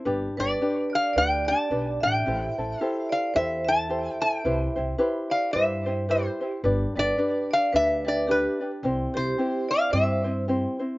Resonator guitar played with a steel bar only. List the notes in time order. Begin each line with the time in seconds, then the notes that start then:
0.40 D5
0.95 F5
1.18 G5
1.48 A5
2.03 G5
2.81 F5
3.12 F5
3.36 E5
3.68 A5
4.22 G5
5.31 F5
5.53 E5
6.11 C5
6.99 D5
7.53 F5
7.76 E5
8.08 D5
8.31 B4
9.17 C5
9.71 F5
9.93 E5